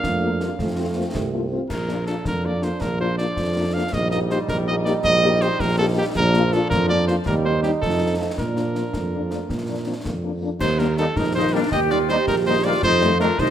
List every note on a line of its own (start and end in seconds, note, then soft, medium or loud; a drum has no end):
0.00 0.50 F2 medium
0.00 0.42 A3 medium
0.00 0.55 A#3 medium
0.00 0.59 D4 medium
0.00 1.11 F5 medium
0.00 concert bass drum medium
0.00 snare medium
0.22 0.29 A#3 medium
0.22 0.29 D4 soft
0.22 0.29 F4 soft
0.40 0.57 G3 medium
0.40 0.48 A#3 soft
0.40 0.48 D4 soft
0.40 0.48 F4 medium
0.40 snare medium
0.58 1.05 F2 medium
0.58 0.67 A3 medium
0.58 1.51 A3 medium
0.58 1.51 C4 medium
0.58 concert bass drum medium
0.58 snare medium
0.77 0.85 A3 medium
0.77 0.85 C4 medium
0.77 0.84 C4 soft
0.77 0.85 F4 soft
0.95 1.04 A3 soft
0.95 1.04 A#3 medium
0.95 1.03 C4 soft
0.95 1.03 F4 soft
1.13 1.60 C2 medium
1.13 1.31 A3 medium
1.13 concert bass drum medium
1.13 snare medium
1.32 1.40 A3 medium
1.32 1.49 A#3 medium
1.32 1.40 C4 soft
1.32 1.40 F4 soft
1.50 1.59 A3 soft
1.50 1.68 C4 medium
1.50 1.59 C4 soft
1.50 1.59 F4 soft
1.70 2.16 A#1 medium
1.70 3.89 F3 medium
1.70 3.89 D4 medium
1.70 2.04 A#4 medium
1.70 concert bass drum medium
1.70 snare medium
1.70 crash soft
1.89 1.95 A#3 soft
1.89 1.95 D4 medium
1.89 1.95 F4 soft
1.89 snare soft
2.07 2.14 A#3 soft
2.07 2.14 D4 soft
2.07 2.14 F4 soft
2.07 2.24 A4 medium
2.07 snare soft
2.25 2.72 F2 medium
2.25 2.47 A#4 medium
2.25 concert bass drum medium
2.25 snare medium
2.44 2.51 A#3 soft
2.44 2.51 D4 soft
2.44 2.51 F4 soft
2.44 2.65 D5 medium
2.62 2.69 A#3 soft
2.62 2.69 D4 medium
2.62 2.69 F4 soft
2.62 2.82 C5 medium
2.62 snare medium
2.81 3.28 A#1 medium
2.81 3.00 A#4 medium
2.81 concert bass drum medium
2.81 snare medium
3.00 3.07 A#3 medium
3.00 3.07 D4 medium
3.00 3.06 F4 medium
3.00 3.17 C5 medium
3.18 3.26 A#3 medium
3.18 3.26 D4 soft
3.18 3.25 F4 medium
3.18 3.75 D5 medium
3.18 snare medium
3.37 3.83 F2 medium
3.37 concert bass drum medium
3.37 snare medium
3.56 3.62 A#3 medium
3.56 3.63 D4 medium
3.56 3.62 F4 medium
3.74 3.82 A#3 medium
3.74 3.82 D4 medium
3.74 3.82 F4 medium
3.74 3.95 F5 medium
3.92 4.39 A#1 medium
3.92 6.11 G3 medium
3.92 6.11 D#4 medium
3.92 4.10 D#5 loud
3.92 concert bass drum medium
3.92 snare medium
4.11 4.18 A#3 medium
4.11 4.18 D#4 medium
4.11 4.18 G4 medium
4.11 4.19 D#5 loud
4.11 snare soft
4.30 4.37 A#3 medium
4.30 4.37 D#4 medium
4.30 4.37 G4 medium
4.30 4.39 C5 medium
4.30 snare medium
4.48 4.95 A#1 medium
4.48 4.57 A#4 medium
4.48 concert bass drum medium
4.48 snare medium
4.67 4.74 A#3 medium
4.67 4.74 D#4 medium
4.67 4.74 G4 medium
4.67 4.76 D#5 loud
4.85 4.92 A#3 medium
4.85 4.92 D#4 medium
4.85 4.92 G4 medium
4.85 4.93 D5 medium
4.85 snare medium
5.04 5.50 A#1 medium
5.04 5.43 D#5 loud
5.04 concert bass drum medium
5.04 snare medium
5.23 5.30 A#3 medium
5.23 5.30 D#4 medium
5.23 5.29 G4 medium
5.40 5.48 A#3 medium
5.40 5.47 D#4 medium
5.40 5.48 G4 medium
5.40 5.62 C5 loud
5.40 snare medium
5.59 6.01 A#1 medium
5.59 5.77 A#4 loud
5.59 concert bass drum medium
5.59 snare medium
5.78 5.85 A#3 medium
5.78 5.85 D#4 medium
5.78 5.85 G4 medium
5.78 5.86 A4 loud
5.96 6.03 A#3 medium
5.96 6.02 D#4 medium
5.96 6.03 G4 medium
5.96 6.06 G4 medium
6.15 6.61 A#1 loud
6.15 7.27 F3 medium
6.15 7.23 D4 medium
6.15 6.55 A#4 loud
6.15 concert bass drum medium
6.15 snare medium
6.15 crash soft
6.33 6.40 A#3 medium
6.33 6.40 D4 medium
6.33 6.40 F4 medium
6.33 snare medium
6.52 6.58 A#3 medium
6.52 6.58 D4 medium
6.52 6.58 F4 medium
6.52 6.69 A4 loud
6.52 snare medium
6.70 7.17 F2 medium
6.70 6.87 A#4 loud
6.70 concert bass drum medium
6.70 snare medium
6.88 6.95 A#3 medium
6.88 6.95 D4 medium
6.88 6.95 F4 medium
6.88 7.06 D5 loud
7.07 7.14 A#3 medium
7.07 7.14 D4 medium
7.07 7.14 F4 medium
7.07 7.16 C5 medium
7.07 snare medium
7.26 7.73 D#2 medium
7.26 7.78 G3 medium
7.26 8.38 D#4 medium
7.26 7.35 A#4 loud
7.26 concert bass drum medium
7.26 snare medium
7.44 7.51 G3 medium
7.44 7.51 C4 medium
7.44 7.51 D#4 medium
7.44 7.62 C5 medium
7.63 7.70 G3 medium
7.63 7.70 C4 soft
7.63 7.70 D#4 medium
7.63 7.71 G4 medium
7.63 snare medium
7.81 8.29 F2 medium
7.81 8.36 F3 medium
7.81 8.16 A4 medium
7.81 concert bass drum medium
7.81 snare medium
7.99 8.06 F3 soft
7.99 8.06 C4 soft
7.99 8.06 D#4 soft
8.17 8.25 F3 soft
8.17 8.25 C4 soft
8.17 8.25 D#4 soft
8.17 8.26 A4 medium
8.37 8.84 A#2 medium
8.37 10.38 F3 medium
8.37 10.42 D4 medium
8.37 10.01 A#4 medium
8.37 concert bass drum medium
8.37 snare medium
8.55 8.62 F3 soft
8.55 8.62 A#3 soft
8.55 8.62 D4 soft
8.55 snare medium
8.75 8.81 F3 soft
8.75 8.82 A#3 soft
8.75 8.81 D4 soft
8.75 snare soft
8.93 9.40 F2 medium
8.93 9.28 A#3 medium
8.93 concert bass drum medium
8.93 snare medium
9.12 9.19 F3 soft
9.12 9.19 A#3 soft
9.12 9.19 D4 soft
9.30 9.37 F3 soft
9.30 9.39 A3 medium
9.30 9.37 A#3 soft
9.30 9.37 D4 soft
9.30 snare soft
9.49 9.96 A#2 medium
9.49 9.57 A#3 medium
9.49 concert bass drum medium
9.49 snare soft
9.67 9.75 F3 soft
9.67 9.75 A#3 soft
9.67 9.75 D4 medium
9.67 9.75 D4 soft
9.86 9.92 F3 soft
9.86 9.93 A#3 soft
9.86 9.95 C4 medium
9.86 9.93 D4 soft
10.05 10.51 F2 medium
10.05 10.13 A#3 medium
10.05 concert bass drum medium
10.05 snare medium
10.23 10.31 F3 soft
10.23 10.30 A#3 soft
10.23 10.32 C4 soft
10.23 10.30 D4 soft
10.42 10.49 F3 soft
10.42 10.49 A#3 soft
10.42 10.50 D4 soft
10.42 10.49 D4 soft
10.60 11.06 D#2 medium
10.60 10.67 D#4 medium
10.60 10.80 C5 loud
10.60 concert bass drum medium
10.60 snare medium
10.60 crash medium
10.78 10.86 D#3 medium
10.78 10.86 G3 medium
10.78 10.86 A#3 medium
10.78 10.84 D4 medium
10.78 10.97 A#4 medium
10.78 snare medium
10.97 11.04 D#3 medium
10.97 11.04 G3 medium
10.97 11.04 A#3 medium
10.97 11.03 C4 medium
10.97 11.03 D#4 medium
10.97 11.19 A4 loud
10.97 snare medium
11.15 11.62 A#1 medium
11.15 11.67 D#4 medium
11.15 11.22 D#4 medium
11.15 11.35 A#4 loud
11.15 concert bass drum medium
11.15 snare medium
11.35 11.42 D#3 medium
11.35 11.42 G3 medium
11.35 11.42 A#3 medium
11.35 11.52 D#4 medium
11.35 11.55 C5 loud
11.52 11.60 D#3 medium
11.52 11.59 G3 medium
11.52 11.60 G3 medium
11.52 11.60 A#3 medium
11.52 11.70 D4 medium
11.52 11.59 D#4 medium
11.52 11.72 A#4 medium
11.71 12.18 D#2 medium
11.71 11.89 G4 medium
11.71 12.84 G4 loud
11.71 11.80 D#5 loud
11.71 concert bass drum medium
11.71 snare medium
11.90 11.97 D#3 medium
11.90 11.97 G3 medium
11.90 11.97 A#3 medium
11.90 12.09 F4 medium
11.90 11.99 D5 loud
11.90 snare medium
12.09 12.15 D#3 medium
12.09 12.15 G3 medium
12.09 12.16 G3 medium
12.09 12.15 A#3 medium
12.09 12.15 D#4 medium
12.09 12.27 D#4 medium
12.09 12.26 C5 loud
12.09 snare medium
12.27 12.73 A#1 medium
12.27 12.34 D#4 medium
12.27 12.36 A#4 loud
12.27 concert bass drum medium
12.27 snare medium
12.46 12.52 D#3 medium
12.46 12.52 G3 medium
12.46 12.53 A#3 medium
12.46 12.63 D#4 medium
12.46 12.66 C5 medium
12.63 12.72 D#3 medium
12.63 12.70 G3 medium
12.63 12.72 G3 medium
12.63 12.72 A#3 medium
12.63 12.70 D#4 medium
12.63 12.82 F4 medium
12.63 12.83 D5 loud
12.82 13.29 F2 medium
12.82 13.18 D#4 medium
12.82 13.38 F4 medium
12.82 13.18 C5 loud
12.82 concert bass drum medium
12.82 snare medium
13.01 13.09 D#3 medium
13.01 13.09 G3 medium
13.01 13.08 A3 medium
13.01 snare medium
13.19 13.27 D#3 medium
13.19 13.27 G3 medium
13.19 13.26 A3 medium
13.19 13.27 A3 medium
13.19 13.37 D4 medium
13.19 13.26 D#4 medium
13.19 13.41 A#4 loud
13.19 snare medium
13.38 13.50 C2 medium
13.38 13.50 D#4 medium
13.38 13.50 C5 loud
13.38 concert bass drum medium
13.38 snare medium